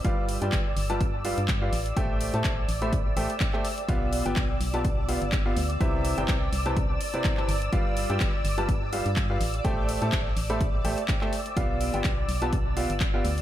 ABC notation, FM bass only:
X:1
M:4/4
L:1/16
Q:"Swing 16ths" 1/4=125
K:Gmix
V:1 name="FM bass" clef=bass
G,,,3 G,, G,,,2 G,,,4- G,,, G,,3 A,,,2 | A,,,3 A,, A,,,2 A,,,4 A,,, z4 z | B,,,3 G,,, B,,,2 B,,,4- B,,, G,,,3 D,,2 | C,,3 G,,, C,,2 C,,4 z4 G,,,2 |
G,,,3 G,, G,,,2 G,,,4- G,,, G,,3 A,,,2 | A,,,3 A,, A,,,2 A,,,4 A,,, z4 z | B,,,3 G,,, B,,,2 B,,,4- B,,, G,,,3 D,,2 |]